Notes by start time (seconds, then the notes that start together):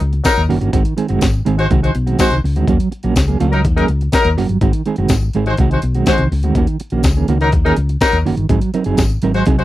0.00 C#2, closed hi-hat
0.13 muted clean electric guitar stroke, closed hi-hat
0.24 F#3 D#4 A#4, muted clean electric guitar stroke, kick, snare, closed hi-hat, tambourine
0.36 D#2, muted clean electric guitar stroke, closed hi-hat
0.49 F#1 D#3 A#3 C#4 F#4, open hi-hat
0.61 G1 D#3 A#3 C#4 F#4, closed hi-hat
0.72 G#1 D#3 G#3 C4 F#4, kick, closed hi-hat
0.85 muted clean electric guitar stroke, closed hi-hat
0.97 D#3 G#3 C4 G#4, closed hi-hat
1.08 F#1 D#3 G#3 C4 F#4, closed hi-hat
1.21 G#1, kick, snare, closed hi-hat, tambourine
1.33 muted clean electric guitar stroke, closed hi-hat
1.45 G#1 D#3 G#3 C4 G#4, closed hi-hat
1.57 G#3 F#4 C5, muted clean electric guitar stroke, closed hi-hat
1.70 C2 D#3 G#3 C4 F#4, kick, closed hi-hat
1.82 G#3 F#4 C5, muted clean electric guitar stroke, closed hi-hat
1.95 B1, muted clean electric guitar stroke, closed hi-hat
2.07 D#3 G#3 C4 F#4, closed hi-hat
2.18 D#3 G#3 C4 F#4 C5, kick, snare, closed hi-hat, tambourine
2.30 C2, muted clean electric guitar stroke, closed hi-hat
2.44 C#2, muted clean electric guitar stroke, open hi-hat
2.56 D2 D#3 G#3 C4 F#4, closed hi-hat
2.68 D#2 F#3 A#3 C#4 F#4, kick, closed hi-hat
2.80 muted clean electric guitar stroke, closed hi-hat
2.92 muted clean electric guitar stroke, closed hi-hat
3.03 A#1 F#3 A#3 C#4 F#4, closed hi-hat
3.16 C#2, muted clean electric guitar stroke, kick, snare, closed hi-hat, tambourine
3.28 F#3 A#3 C#4 G#4, closed hi-hat
3.40 C#2 F#3 A#3 C#4 F#4, closed hi-hat
3.51 F#3 D#4 A#4, muted clean electric guitar stroke, closed hi-hat
3.64 D#2, muted clean electric guitar stroke, kick, closed hi-hat
3.76 F#3 A#3 C#4 D#4 G#4 A#4, closed hi-hat
3.88 C#2, muted clean electric guitar stroke, closed hi-hat
4.01 muted clean electric guitar stroke, closed hi-hat
4.12 F#3 D#4 A#4, kick, snare, closed hi-hat, tambourine
4.24 D#2, muted clean electric guitar stroke, closed hi-hat
4.37 F#1 F#3 A#3 C#4 F#4, snare, open hi-hat
4.49 G1, muted clean electric guitar stroke, closed hi-hat
4.61 G#1 D#3 G#3 C4 F#4, kick, closed hi-hat
4.73 muted clean electric guitar stroke, closed hi-hat
4.86 D#3 G#3 C4 G#4, closed hi-hat
4.96 F#1 D#3 G#3 C4 F#4, closed hi-hat
5.08 G#1, kick, snare, closed hi-hat, tambourine
5.21 muted clean electric guitar stroke, closed hi-hat
5.33 G#1 D#3 G#3 C4 G#4, closed hi-hat
5.45 G#3 F#4 C5, muted clean electric guitar stroke, closed hi-hat
5.57 C2 D#3 G#3 C4 F#4, kick, closed hi-hat
5.70 G#3 F#4 C5, muted clean electric guitar stroke, closed hi-hat
5.82 B1, muted clean electric guitar stroke, closed hi-hat
5.95 D#3 G#3 C4 F#4, closed hi-hat
6.06 D#3 G#3 C4 F#4 C5, kick, snare, closed hi-hat, tambourine
6.18 C2, muted clean electric guitar stroke, closed hi-hat
6.32 C#2, muted clean electric guitar stroke, open hi-hat
6.43 D2 D#3 G#3 C4 F#4, closed hi-hat
6.55 D#2 D#3 A#3 C#4 F#4, kick, closed hi-hat
6.67 muted clean electric guitar stroke, closed hi-hat
6.80 muted clean electric guitar stroke, closed hi-hat
6.90 A#1 D#3 A#3 C#4 F#4, closed hi-hat
7.03 C#2, kick, snare, closed hi-hat, tambourine
7.16 D#3 A#3 C#4 G#4, closed hi-hat
7.28 C#2 D#3 A#3 C#4 F#4, closed hi-hat
7.40 F#3 D#4 A#4, muted clean electric guitar stroke, closed hi-hat
7.52 D#2, muted clean electric guitar stroke, kick, closed hi-hat
7.64 D#3 F#3 A#3 C#4 D#4 G#4 A#4, closed hi-hat
7.76 C#2, muted clean electric guitar stroke, closed hi-hat
7.89 muted clean electric guitar stroke, closed hi-hat
8.00 F#3 D#4 A#4, kick, snare, closed hi-hat, tambourine
8.12 D#2, muted clean electric guitar stroke, closed hi-hat
8.25 F#1 D#3 A#3 C#4 F#4, open hi-hat
8.37 G1, muted clean electric guitar stroke, closed hi-hat
8.49 G#1 F#3 C4 D#4 G#4, kick, closed hi-hat
8.61 muted clean electric guitar stroke, closed hi-hat
8.74 F#3 C4 D#4 A#4, closed hi-hat
8.84 F#1 F#3 C4 D#4 G#4, closed hi-hat
8.97 G#1, kick, snare, closed hi-hat, tambourine
9.10 muted clean electric guitar stroke, closed hi-hat
9.22 G#1 F#3 C4 D#4 A#4, closed hi-hat
9.33 G#3 F#4 C5, muted clean electric guitar stroke, closed hi-hat
9.46 C2 F#3 C4 D#4 G#4, kick, closed hi-hat
9.58 G#3 F#4 C5, muted clean electric guitar stroke, closed hi-hat